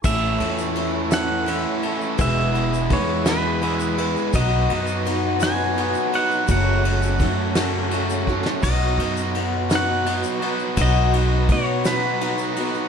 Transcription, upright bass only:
\new Staff \with { instrumentName = "Upright bass" } { \clef bass \time 6/8 \key b \mixolydian \tempo 4. = 56 a,,8 e,2 r8 | e,,4 e,2 | b,,8 fis,2 r8 | fis,,4 fis,2 |
b,,8 fis,2 r8 | b,,4 b,2 | }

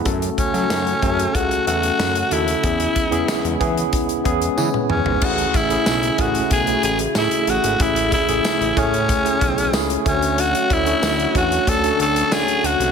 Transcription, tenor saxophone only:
\new Staff \with { instrumentName = "Tenor saxophone" } { \time 4/4 \key a \major \tempo 4 = 93 r8 cis'4. fis'8 fis'4 e'8~ | e'4. r2 cis'8 | fis'8 e'4 fis'8 gis'8 gis'8 e'8 fis'8 | e'8 e'4 cis'4. r8 cis'8 |
fis'8 e'4 fis'8 a'8 a'8 gis'8 fis'8 | }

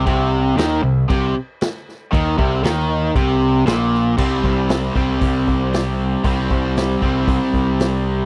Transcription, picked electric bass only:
\new Staff \with { instrumentName = "Picked electric bass" } { \clef bass \time 4/4 \key bes \lydian \tempo 4 = 116 c,4 ees,8 c,8 c,8 r4. | ees,8 c,8 ees,4 c,4 bes,,4 | c,8 c,4 c,8 c,8 c,4. | c,8 c,4 c,8 c,16 r16 c,4. | }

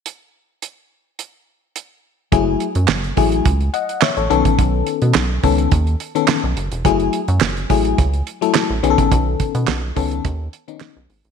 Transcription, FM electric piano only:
\new Staff \with { instrumentName = "FM electric piano" } { \time 4/4 \key fis \dorian \tempo 4 = 106 << { r1 | r2 r8 <dis'' fis''>8 <cis'' e''>16 <a' cis''>8 r16 | r1 | r1 |
r1 | } \\ { r1 | <fis a e' gis'>8 r4 <fis a e' gis'>8 r4. <dis b cis' a'>8~ | <dis b cis' a'>4 r8 <dis b cis' a'>8 r8. <dis b cis' a'>8 r8. | <fis a e' gis'>8 r4 <fis a e' gis'>8 r8. <fis a e' a'>8 r16 <dis b cis' gis' a'>8~ |
<dis b cis' gis' a'>4 r8 <dis b cis' a'>8 r8. <dis b cis' dis'>8 r8. | } >> }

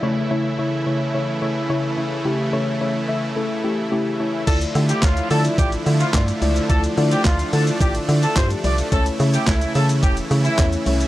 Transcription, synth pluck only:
\new Staff \with { instrumentName = "Synth pluck" } { \time 4/4 \key d \minor \tempo 4 = 108 <cis a e' cis''>8 <cis a e' cis''>8 <cis a e' cis''>8 <cis a e' cis''>8 <cis a e' cis''>8 <cis a e' cis''>8 <cis a e' cis''>8 <cis a e' cis''>8 | <cis a e' g'>8 <cis a e' cis''>8 <cis a e' cis''>8 <cis a e' e''>8 <cis a e' a'>8 <cis a e' g'>8 <cis a e' g'>8 <cis a e' cis''>8 | <a e' f' d''>8 <a e' f' g'>8 <a e' f' cis''>8 <a e' f' d''>8 <a e' f' d''>8 <a e' f' d''>8 <a e' f' d''>8 <a e' f' d''>8 | <a e' f' d''>8 <a e' f' d''>8 a8 <a e' f' a'>8 <a e' f' d''>8 <a e' f' d''>8 <a e' f' g'>8 <a e' f' d''>8 |
<a cis' e' cis''>8 <a cis' e' cis''>8 <a cis' e' cis''>8 <a cis' e' cis''>8 <a cis' e' cis''>8 <a cis' e' cis''>8 <a cis' e' cis''>8 <a cis' e' cis''>8 | }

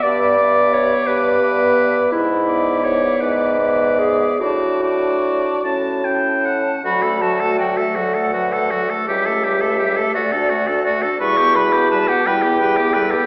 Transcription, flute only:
\new Staff \with { instrumentName = "Flute" } { \time 6/8 \key d \major \tempo 4. = 55 e''8 e''4. e''4 | r8 e''4. e''4 | a''8 a''4 a''8 a''4 | b''8 a''8 g''16 e''16 fis''4. |
e''4. d''4. | cis'''8 b''8 a''16 fis''16 g''4 r8 | }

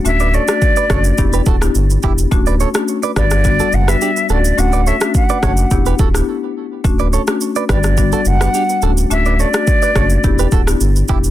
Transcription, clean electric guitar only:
\new Staff \with { instrumentName = "Clean electric guitar" } { \time 4/4 \key d \major \tempo 4 = 106 r16 <b' d''>16 <a' cis''>16 r8 <b' d''>16 <a' cis''>16 r8 <g' b'>16 <fis' a'>16 r8. <e' g'>16 r16 | r16 <b' d''>16 <a' cis''>16 r8 <b' d''>16 <g' b'>16 r8 <fis' a'>16 r16 <g' b'>16 <d' g'>16 r16 <fis' a'>16 r16 | r16 <b' d''>16 <a' cis''>16 r8 <b' d''>16 <a' cis''>16 r8 <g' b'>16 <fis' a'>16 r4 r16 | r16 <b' d''>16 <a' cis''>16 r8 <b' d''>16 <g' b'>16 r8 <fis' a'>16 r16 <g' b'>16 <d' g'>16 r16 <fis' a'>16 r16 |
r16 <b' d''>16 <a' cis''>16 r8 <b' d''>16 <a' cis''>16 r8 <g' b'>16 <fis' a'>16 r8. <e' g'>16 r16 | }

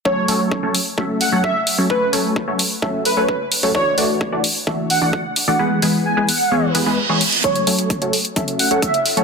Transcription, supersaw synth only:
\new Staff \with { instrumentName = "Supersaw synth" } { \time 4/4 \key fis \minor \tempo 4 = 130 <fis a cis' a' cis''>8 <fis a cis' a' cis''>8. <fis a cis' a' cis''>16 r8 <fis a cis' a' e''>8. <fis a cis' a' cis''>8 r8 <fis a cis' a' cis''>16 | <fis a cis' a' cis''>8 <fis a cis' a' cis''>8. <fis a cis' a' cis''>16 r8 <fis a cis' a' e''>8. <fis a cis' a' cis''>8 r8 <fis a cis' a' cis''>16 | <e a d' fis' d''>8 <e a d' fis' d''>8. <e a d' fis' d''>16 r8 <e a d' fis' e''>8. <e a d' fis' d''>8 r8 <e a d' fis' d''>16 | <e gis b gis' b'>8 <e gis b gis' b'>8. <e gis b gis' b'>16 r8 <e gis b gis' cis''>8 <e gis b gis' b'>16 <e gis b gis' b'>16 r16 <e gis b gis' cis''>16 r8 |
<fis a cis' a' cis''>8 <fis a cis' a' cis''>8. <fis a cis' a' cis''>16 r8 <fis a cis' a' e''>8. <fis a cis' a' cis''>8 r8 <fis a cis' a' cis''>16 | }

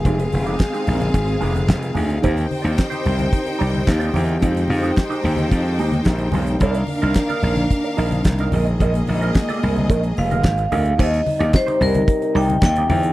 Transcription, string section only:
\new Staff \with { instrumentName = "String section" } { \time 4/4 \key f \dorian \tempo 4 = 110 <c' aes' f''>1 | <ees' c'' g''>1 | <ees' c'' g''>1 | <d' bes' f''>2.~ <d' bes' f''>8 <bes aes' ees''>8~ |
<bes aes' ees''>1 | r1 | }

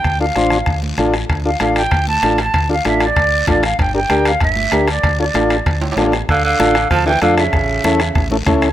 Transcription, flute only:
\new Staff \with { instrumentName = "Flute" } { \time 4/4 \key d \minor \tempo 4 = 192 g''8 f''2 r4. | r8 f''8 f''8 g''4 a''4 a''8~ | a''8 f''8 e''8 d''4. d''8 f''8 | g''8 g''4 f''8 e''4. d''8~ |
d''8 d''2 r4. | f''8 f''4. a''8 g''8 f''8 e''8~ | e''2~ e''8 r4. | }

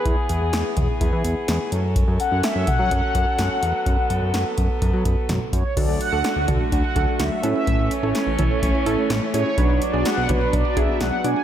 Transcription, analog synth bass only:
\new Staff \with { instrumentName = "Analog synth bass" } { \clef bass \time 4/4 \key fis \minor \tempo 4 = 126 e,16 r16 e,16 e,16 e,16 r16 e,16 r16 e,16 e16 e,16 r16 e,16 r16 fis,8~ | fis,16 fis,16 r16 fis,16 r16 fis,16 r16 fis16 fis,16 r16 fis,16 r16 fis,16 r16 e,16 r16 | fis,16 r16 fis,16 fis,16 fis,16 r16 fis,16 r16 fis,16 fis16 fis,16 r16 fis,16 r16 fis,16 r16 | d,16 d,16 r16 d,16 r16 d,16 d,16 r16 d,16 r16 d,16 r16 d,16 r16 a,16 r16 |
a,,16 a,,16 r16 a,,16 r16 a,,16 a,,16 r16 a,,16 r16 a,,16 r16 a,,16 r16 a,16 r16 | b,,16 b,,16 r16 b,,16 r16 b,,16 b,,16 r16 b,,16 r16 b,,16 r16 b,,16 r16 b,16 r16 | }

